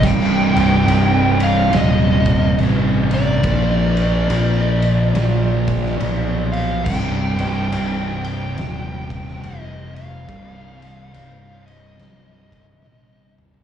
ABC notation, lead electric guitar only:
X:1
M:4/4
L:1/8
Q:"Swing" 1/4=70
K:Cm
V:1 name="Lead electric guitar"
g3 f e2 z d- | d6- d f | g3 g3 e f- | f2 f e4 z |]